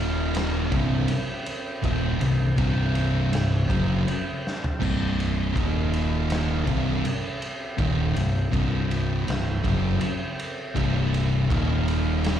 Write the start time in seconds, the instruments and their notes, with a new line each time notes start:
Already playing: picked electric bass D#1, distorted electric guitar D#2 A#2 D#3, woodwind section D#4 A#4 F5
0.35 snare, ride
0.72 picked electric bass C1, distorted electric guitar C2 G2 C3, woodwind section C4 C5 G5, kick, ride
1.08 ride
1.46 ride
1.82 picked electric bass D#1, distorted electric guitar D#2 A#2 D#3, kick, ride
2.21 picked electric bass C1, distorted electric guitar C2 G2, ride
2.57 picked electric bass C1, distorted electric guitar C2 G2 C3, kick, ride
2.95 ride
3.32 picked electric bass C1, distorted electric guitar C2 G2, snare, ride
3.69 picked electric bass F#1, distorted electric guitar F#2 C#3 F#3, kick, ride
4.06 muted distorted electric guitar stroke, muted picked electric bass stroke, ride
4.47 snare
4.64 floor tom
4.80 picked electric bass C1, distorted electric guitar C2 G2 C3, kick, crash
5.20 ride
5.53 picked electric bass D#1, distorted electric guitar D#2 A#2 D#3, woodwind section D#4 A#4 F5, kick, ride
5.93 ride
6.30 snare, ride
6.65 picked electric bass C1, distorted electric guitar C2 G2 C3, woodwind section C4 C5 G5, kick, ride
7.05 ride
7.42 ride
7.77 picked electric bass D#1, distorted electric guitar D#2 A#2 D#3, kick, ride
8.14 picked electric bass C1, distorted electric guitar C2 G2, ride
8.51 picked electric bass C1, distorted electric guitar C2 G2 C3, kick, ride
8.91 ride
9.26 picked electric bass C1, distorted electric guitar C2 G2, ride
9.30 snare
9.63 picked electric bass F#1, distorted electric guitar F#2 C#3 F#3, kick, ride
10.00 muted distorted electric guitar stroke, muted picked electric bass stroke, ride
10.39 ride
10.74 picked electric bass C1, distorted electric guitar C2 G2 C3, kick, ride
11.14 ride
11.50 picked electric bass D#1, distorted electric guitar D#2 A#2 D#3, woodwind section D#4 A#4 F5, kick, ride
11.88 ride
12.24 snare, ride